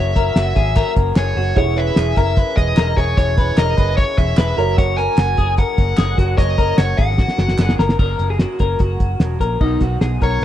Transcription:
Already playing: fingered electric bass F#1, clean electric guitar F#2 C#3 F#3 A#3 C#4 F#4 C#5, upright piano F#4 A#4 C#5, lead electric guitar E5
0.15 clean electric guitar F#3 A#3 C#4 F#4 A#4, kick, closed hi-hat
0.36 fingered electric bass F#1, clean electric guitar F#4, snare, clap, closed hi-hat
0.55 fingered electric bass G#1, clean electric guitar F#3 A#3 C#4 F#4 G#4, kick, closed hi-hat
0.76 clean electric guitar A#4, kick, clap, closed hi-hat
0.95 fingered electric bass F#1, clean electric guitar F#3 A#3 C#4 F#4, kick, closed hi-hat
1.16 fingered electric bass F#1, clean electric guitar F#3 A#3 C#4 F#4 G#4, lead electric guitar C#5, snare, clap, closed hi-hat
1.36 fingered electric bass F#1, clean electric guitar F#3 A#3 C#4 F#4, open hi-hat
1.56 fingered electric bass E1, clean electric guitar E3 C#4 E4 G#4 C#5, upright piano E4 G#4 C#5, lead electric guitar F#5, kick, closed hi-hat
1.75 clean electric guitar C#4 E4 G#4 B4, lead electric guitar E5, closed hi-hat
1.96 fingered electric bass E1, clean electric guitar G#4, snare, clap, closed hi-hat
2.15 fingered electric bass F#1, clean electric guitar C#4 E4 G#4 A#4, lead electric guitar E5, kick, closed hi-hat
2.37 clean electric guitar B4, kick, closed hi-hat
2.56 fingered electric bass E1, clean electric guitar C#4 E4 G#4, lead electric guitar D#5, kick, closed hi-hat
2.76 fingered electric bass E1, clean electric guitar E3 C#4 E4 G#4 A#4, snare, clap, closed hi-hat
2.96 fingered electric bass E1, clean electric guitar C#4 E4 G#4, lead electric guitar C#5, kick, closed hi-hat
3.17 fingered electric bass E1, clean electric guitar E3 C#4 E4 G#4 C#5, lead electric guitar C#5, kick, closed hi-hat
3.37 clean electric guitar C#4 E4 G#4 B4, kick, closed hi-hat
3.57 fingered electric bass E1, clean electric guitar A#4, lead electric guitar D#5, snare, clap, closed hi-hat
3.77 fingered electric bass F#1, clean electric guitar C#4 E4 G#4 B4, kick, closed hi-hat
3.97 lead electric guitar C#5, clean electric guitar C#5, kick, closed hi-hat
4.18 fingered electric bass E1, clean electric guitar C#4 E4 G#4, lead electric guitar E5, kick, closed hi-hat
4.37 fingered electric bass E1, clean electric guitar E3 C#4 E4 G#4 B4, lead electric guitar E5, snare, clap, closed hi-hat
4.57 fingered electric bass F#1, clean electric guitar A#3 C#4 A#4, upright piano F#4 A#4 C#5, closed hi-hat
4.61 clean electric guitar F#3
4.78 clean electric guitar F#2 C#3 F#3 A#3 C#4 A#4 C#5, lead electric guitar F#5, kick, closed hi-hat
4.97 clean electric guitar A#3 C#4 A#4, lead electric guitar G#5, closed hi-hat
5.02 clean electric guitar F#3
5.18 fingered electric bass F#1, clean electric guitar F#4, snare, clap, closed hi-hat
5.37 fingered electric bass F#1, clean electric guitar F#3 A#3 C#4 G#4 A#4, kick, closed hi-hat
5.57 clean electric guitar A#4, lead electric guitar F#5, kick, closed hi-hat
5.77 fingered electric bass F#1, clean electric guitar F#3 A#3 C#4 A#4, kick, closed hi-hat
5.97 fingered electric bass F#1, clean electric guitar F#3 A#3 C#4 G#4 A#4, snare, clap, closed hi-hat
6.18 fingered electric bass F#1, clean electric guitar F#3 A#3 C#4 F#4 A#4, kick, closed hi-hat
6.37 fingered electric bass F#1, clean electric guitar F#2 C#3 F#3 A#3 C#4 A#4 C#5, lead electric guitar D#5, kick, closed hi-hat
6.58 clean electric guitar F#3 A#3 C#4 A#4, kick, closed hi-hat
6.78 fingered electric bass F#1, clean electric guitar F#4, lead electric guitar C#5, snare, clap, closed hi-hat
6.97 fingered electric bass G#1, clean electric guitar F#3 A#3 C#4 G#4 A#4, lead electric guitar F#5, kick, closed hi-hat
7.18 clean electric guitar F#4, kick, snare
7.28 snare
7.38 fingered electric bass F#1, clean electric guitar F#3 A#3 C#4 A#4, snare
7.48 snare
7.58 fingered electric bass F#1, clean electric guitar F#3 A#3 C#4 G#4 A#4, snare, clap
7.69 snare
7.79 fingered electric bass F#1, clean electric guitar F#3 A#3 C#4 A#4, snare
7.89 snare
7.99 fingered electric bass F#1, clean electric guitar F#2 C#3 F#3 A#3 C#4 A#4, kick, crash
8.19 fingered electric bass F#1, clean electric guitar F#3 A#3 C#4 A#4, closed hi-hat
8.30 clean electric guitar G#4
8.39 clean electric guitar F#3 A#3 C#4 F#4 A#4, snare, closed hi-hat
8.59 fingered electric bass F#1, clean electric guitar F#3 A#3 C#4 A#4, kick, closed hi-hat
8.79 fingered electric bass F#1, clean electric guitar F#4, kick, closed hi-hat
9.00 fingered electric bass F#1, kick, closed hi-hat
9.20 fingered electric bass E1, clean electric guitar F#3 A#3 C#4 A#4, snare, closed hi-hat
9.40 fingered electric bass A#1, clean electric guitar F#3 A#3 C#4 A#4, kick, closed hi-hat
9.60 fingered electric bass B1, clean electric guitar B2 F#3 B3 D#4 F#4, kick, crash
9.80 fingered electric bass B1, clean electric guitar B3 D#4 F#4, kick, closed hi-hat
10.00 fingered electric bass B1, clean electric guitar F#3 B3 D#4 F#4 G#4, snare, closed hi-hat
10.20 fingered electric bass B1, clean electric guitar B3 D#4 F#4 A#4, lead electric guitar C#5, kick, closed hi-hat
10.42 fingered electric bass B1, closed hi-hat

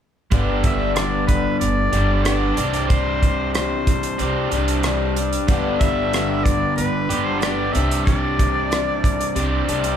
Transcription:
0.31 upright bass G1, steel-string acoustic guitar G2 D3 G3 B3 D4 G4, kick, closed hi-hat
0.64 oboe E5, kick, closed hi-hat
0.95 steel-string acoustic guitar G2 D3 G3 B3 D4 G4, oboe D5, cross-stick, closed hi-hat
1.27 oboe B4, kick, closed hi-hat
1.60 upright bass G1, steel-string acoustic guitar G3 B3, oboe D5, closed hi-hat
1.64 steel-string acoustic guitar D4 G4
1.93 upright bass G1, overdriven electric guitar G2 D3, steel-string acoustic guitar B3 D4 G4, closed hi-hat
1.98 steel-string acoustic guitar G3
2.23 oboe D5, cross-stick, closed hi-hat
2.27 steel-string acoustic guitar G2 D3 G3 B3 D4 G4
2.57 upright bass C2, overdriven electric guitar C3 G3 C4 G4, closed hi-hat
2.61 steel-string acoustic guitar C4 D4
2.74 closed hi-hat
2.88 steel-string acoustic guitar C3 G3, oboe C5, kick, closed hi-hat
2.93 steel-string acoustic guitar C4 D4 G4
3.23 kick, closed hi-hat
3.53 steel-string acoustic guitar C3 G3 C4 D4 G4, oboe C5, cross-stick, closed hi-hat
3.87 kick, closed hi-hat
4.03 closed hi-hat
4.18 upright bass C2, overdriven electric guitar C3, steel-string acoustic guitar G3 C4 D4, closed hi-hat
4.23 steel-string acoustic guitar G4
4.52 upright bass C2, overdriven electric guitar C3 G3, steel-string acoustic guitar C4 D4 G4, closed hi-hat
4.68 closed hi-hat
4.83 steel-string acoustic guitar C3 G3 C4 D4 G4, cross-stick, closed hi-hat
5.16 steel-string acoustic guitar C4 D4 G4, closed hi-hat
5.33 closed hi-hat
5.48 upright bass G1, steel-string acoustic guitar G2 D3 G3 B3 D4 G4, kick, closed hi-hat
5.79 oboe E5, kick, closed hi-hat
6.13 steel-string acoustic guitar G2 D3 G3 B3 D4 G4, cross-stick, closed hi-hat
6.44 oboe D5, kick, closed hi-hat
6.76 upright bass G1, steel-string acoustic guitar G3 B3 D4 G4, oboe B4, closed hi-hat
7.09 upright bass G1, overdriven electric guitar G2 D3, steel-string acoustic guitar G3 B3 D4 G4, closed hi-hat
7.25 oboe C5
7.39 steel-string acoustic guitar G2 D3 G3 B3 D4, oboe D5, cross-stick, closed hi-hat
7.43 steel-string acoustic guitar G4
7.73 upright bass C2, overdriven electric guitar C3 G3, steel-string acoustic guitar D4 G4, oboe E5, closed hi-hat
7.77 steel-string acoustic guitar C4
7.91 closed hi-hat
8.04 steel-string acoustic guitar C3 G3 C4 D4 G4, oboe D5, kick, closed hi-hat
8.39 kick, closed hi-hat
8.71 steel-string acoustic guitar C3 G3 C4 D4 G4, cross-stick, closed hi-hat
9.04 kick, closed hi-hat
9.21 closed hi-hat
9.35 upright bass C2, overdriven electric guitar C3, steel-string acoustic guitar G3 C4 D4, closed hi-hat
9.39 steel-string acoustic guitar G4
9.68 upright bass C2, overdriven electric guitar C3 G3, steel-string acoustic guitar C4 D4 G4, closed hi-hat
9.84 closed hi-hat

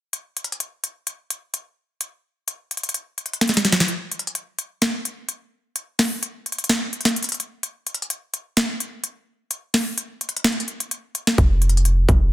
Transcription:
0.13 closed hi-hat
0.37 closed hi-hat
0.44 closed hi-hat
0.52 closed hi-hat
0.60 closed hi-hat
0.84 closed hi-hat
1.07 closed hi-hat
1.30 closed hi-hat
1.54 closed hi-hat
2.01 closed hi-hat
2.48 closed hi-hat
2.71 closed hi-hat
2.77 closed hi-hat
2.83 closed hi-hat
2.89 closed hi-hat
2.94 closed hi-hat
3.18 closed hi-hat
3.26 closed hi-hat
3.33 closed hi-hat
3.41 snare, closed hi-hat
3.48 snare, closed hi-hat
3.49 closed hi-hat
3.54 snare, closed hi-hat
3.57 closed hi-hat
3.59 closed hi-hat
3.65 snare, closed hi-hat
3.72 snare
3.80 snare
3.88 closed hi-hat
4.12 closed hi-hat
4.19 closed hi-hat
4.27 closed hi-hat
4.35 closed hi-hat
4.59 closed hi-hat
4.82 snare, closed hi-hat
5.05 closed hi-hat
5.29 closed hi-hat
5.76 closed hi-hat
5.99 snare, open hi-hat
6.23 closed hi-hat
6.46 closed hi-hat
6.52 closed hi-hat
6.58 closed hi-hat
6.64 closed hi-hat
6.69 snare, closed hi-hat
6.93 closed hi-hat
7.01 closed hi-hat
7.05 snare, closed hi-hat
7.16 closed hi-hat
7.23 closed hi-hat
7.24 closed hi-hat
7.29 closed hi-hat
7.32 closed hi-hat
7.34 closed hi-hat
7.40 closed hi-hat
7.63 closed hi-hat
7.87 closed hi-hat
7.94 closed hi-hat
8.02 closed hi-hat
8.10 closed hi-hat
8.34 closed hi-hat
8.57 snare, closed hi-hat
8.80 closed hi-hat
9.04 closed hi-hat
9.51 closed hi-hat
9.74 snare, open hi-hat
9.98 closed hi-hat
10.21 closed hi-hat
10.29 closed hi-hat
10.37 closed hi-hat
10.44 snare, closed hi-hat
10.52 closed hi-hat
10.60 closed hi-hat
10.68 closed hi-hat
10.80 closed hi-hat
10.91 closed hi-hat
11.15 closed hi-hat
11.27 snare
11.38 808-style bass F1, kick, closed hi-hat
11.62 closed hi-hat
11.69 closed hi-hat
11.77 closed hi-hat
11.85 closed hi-hat
12.09 808-style bass F1, kick, closed hi-hat

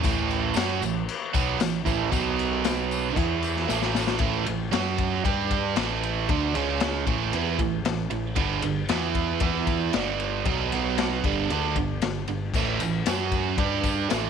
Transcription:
0.03 picked electric bass A1, overdriven electric guitar A2 E3 A3, kick, tambourine, crash
0.29 tambourine, crash
0.54 picked electric bass F#2, overdriven electric guitar F#3 C#4 F#4, snare, tambourine, crash
0.81 picked electric bass A1, overdriven electric guitar A2 E3, tambourine, crash
1.09 crash
1.33 picked electric bass B1, overdriven electric guitar B2 F#3 B3, kick, tambourine, crash
1.59 picked electric bass A1, overdriven electric guitar A2 E3, snare, tambourine, crash
1.85 picked electric bass A1, overdriven electric guitar A2 E3 A3, kick, tambourine, crash
2.11 picked electric bass B1, overdriven electric guitar B2 F#3 B3, kick, tambourine, crash
2.39 tambourine, crash
2.64 snare, tambourine, crash
2.91 tambourine, crash
3.14 picked electric bass E2, overdriven electric guitar E3 B3 E4, kick, crash
3.42 tambourine, crash
3.56 snare
3.68 picked electric bass A1, overdriven electric guitar A2 E3 A3, snare, tambourine
3.82 snare
3.95 snare, tambourine
4.07 snare
4.19 picked electric bass A1, overdriven electric guitar A2 E3 A3, kick, ride
4.46 picked electric bass A1, overdriven electric guitar A2 E3, ride
4.71 picked electric bass F#2, overdriven electric guitar F#3 C#4 F#4, snare, ride
4.98 kick, ride
5.24 picked electric bass G2, overdriven electric guitar G3 D4 G4, kick, ride
5.51 kick, ride
5.76 picked electric bass A1, overdriven electric guitar A2 E3 A3, snare, ride
6.03 ride
6.29 picked electric bass D2, overdriven electric guitar D3 A3 D4, kick, ride
6.54 picked electric bass C#2, overdriven electric guitar C#3 G#3 C#4, ride
6.80 snare, ride
7.07 picked electric bass A1, overdriven electric guitar A2 E3 A3, kick, ride
7.33 picked electric bass E2, overdriven electric guitar E3 B3 E4, ride
7.59 picked electric bass A1, overdriven electric guitar A2 E3, kick, ride
7.85 picked electric bass A1, overdriven electric guitar A2 E3, snare, ride
8.10 picked electric bass A1, overdriven electric guitar A2 E3, ride
8.36 picked electric bass G1, overdriven electric guitar G2 D3 G3, kick, ride
8.62 picked electric bass G1, overdriven electric guitar G2 D3, ride
8.89 picked electric bass E2, overdriven electric guitar E3 B3 E4, snare, ride
9.15 kick, ride
9.40 picked electric bass E2, overdriven electric guitar E3 B3 E4, kick, ride
9.67 kick, ride
9.93 picked electric bass G1, overdriven electric guitar G2 D3 G3, snare, ride
10.20 ride
10.45 picked electric bass B1, overdriven electric guitar B2 F#3 B3, kick, ride
10.72 picked electric bass B1, overdriven electric guitar B2 F#3 B3, ride
10.98 snare, ride
11.24 picked electric bass G1, overdriven electric guitar G2 D3 G3, kick, ride
11.50 picked electric bass D2, overdriven electric guitar D3 A3 D4, ride
11.76 picked electric bass G1, overdriven electric guitar G2 D3, kick, ride
12.02 picked electric bass G1, overdriven electric guitar G2 D3, snare, ride
12.28 picked electric bass G1, overdriven electric guitar G2 D3, ride
12.53 picked electric bass A1, overdriven electric guitar A2 E3 A3, kick, crash, tambourine
12.80 picked electric bass A1, overdriven electric guitar A2 E3, ride, tambourine
13.06 picked electric bass F#2, overdriven electric guitar F#3 C#4 F#4, snare, ride, tambourine
13.31 kick, ride, tambourine
13.57 picked electric bass G2, overdriven electric guitar G3 D4 G4, kick, ride
13.84 kick, ride, tambourine
14.09 picked electric bass A1, overdriven electric guitar A2 E3 A3, snare, ride, tambourine

